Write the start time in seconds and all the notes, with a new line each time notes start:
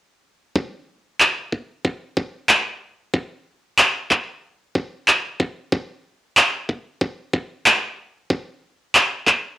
0.56 kick
1.20 clap
1.52 kick
1.85 kick
2.17 kick
2.49 clap
3.14 kick
3.78 clap
4.11 kick, clap
4.75 kick
5.08 clap
5.40 kick
5.72 kick
6.37 clap
6.69 kick
7.01 kick
7.33 kick
7.66 clap
8.30 kick
8.95 clap
9.27 kick, clap